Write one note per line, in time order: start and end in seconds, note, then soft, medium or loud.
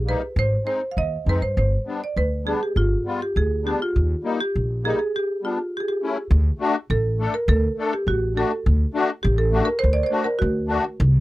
0.00 0.13 A#1 medium
0.06 0.21 G3 medium
0.06 0.21 A#3 medium
0.06 0.22 D#4 medium
0.06 0.38 B4 medium
0.36 0.54 G#1 loud
0.36 0.66 C5 loud
0.65 0.81 G#3 medium
0.65 0.81 C4 medium
0.65 0.81 D#4 medium
0.65 0.91 C5 medium
0.92 0.97 F5 medium
0.97 1.15 D#2 medium
0.97 1.28 D#5 loud
1.26 1.40 F2 medium
1.26 1.41 G#3 medium
1.26 1.41 C4 medium
1.26 1.42 D#4 medium
1.26 1.43 B4 medium
1.42 1.55 G2 medium
1.42 1.56 C5 medium
1.57 1.75 G1 loud
1.57 2.03 C5 medium
1.86 2.01 G3 medium
1.86 2.01 B3 medium
1.86 2.02 D4 medium
2.04 2.18 D5 medium
2.16 2.52 D2 medium
2.16 2.47 B4 loud
2.45 2.60 G3 medium
2.45 2.61 B3 medium
2.45 2.61 D4 medium
2.45 2.62 G#4 medium
2.63 2.76 G4 medium
2.76 2.94 G1 medium
2.76 3.18 F4 medium
3.05 3.20 G3 medium
3.05 3.21 B3 medium
3.05 3.21 F4 medium
3.22 3.37 G4 medium
3.36 3.72 D2 medium
3.36 3.64 G#4 medium
3.64 3.79 G3 medium
3.64 3.80 B3 medium
3.64 3.80 D4 medium
3.64 3.81 G4 medium
3.82 4.37 F4 medium
3.96 4.13 D#2 medium
4.23 4.39 G3 medium
4.23 4.39 A#3 medium
4.23 4.40 D#4 medium
4.41 4.86 G4 medium
4.56 4.91 A#1 medium
4.83 4.98 G3 medium
4.83 4.99 A#3 medium
4.83 4.99 D#4 medium
4.83 4.91 G#4 medium
4.90 4.97 G4 medium
4.99 5.15 G#4 medium
5.16 5.42 G4 medium
5.42 5.58 G3 medium
5.42 5.58 B3 soft
5.42 5.59 D4 medium
5.42 5.72 F4 medium
5.77 5.81 G4 medium
5.77 5.86 G#4 medium
5.88 6.16 G4 medium
6.02 6.17 A3 medium
6.02 6.17 C#4 medium
6.02 6.18 E4 medium
6.31 6.49 D2 loud
6.59 6.75 A3 medium
6.59 6.76 D4 medium
6.59 6.76 F#4 loud
6.90 7.25 A1 loud
6.90 7.32 A4 loud
7.19 7.34 A3 medium
7.19 7.35 D4 medium
7.19 7.35 A4 medium
7.34 7.50 A#4 medium
7.48 7.66 D2 loud
7.48 7.90 A4 loud
7.78 7.93 A3 medium
7.78 7.94 D4 medium
7.78 7.94 A4 medium
7.93 8.07 G4 medium
8.07 8.42 A1 medium
8.07 8.38 F#4 medium
8.35 8.51 A3 medium
8.35 8.52 D4 medium
8.35 8.52 F#4 medium
8.35 8.65 A4 medium
8.66 8.84 D2 loud
8.94 9.10 A3 medium
8.94 9.10 D4 medium
8.94 9.11 F#4 medium
9.23 9.60 A1 loud
9.23 9.39 G4 medium
9.38 9.69 A4 loud
9.52 9.68 A3 medium
9.52 9.68 D4 medium
9.52 9.69 F#4 medium
9.65 9.82 A#4 medium
9.79 9.96 C5 loud
9.83 10.01 D2 medium
9.93 10.02 D5 loud
10.03 10.10 C5 medium
10.03 10.25 D5 medium
10.10 10.26 A3 medium
10.10 10.26 D4 medium
10.10 10.27 F#4 medium
10.24 10.39 A#4 medium
10.39 10.76 D2 loud
10.39 10.94 F#4 medium
10.68 10.84 A3 medium
10.68 10.84 D4 medium
10.68 10.85 F#4 medium
11.00 11.17 C2 loud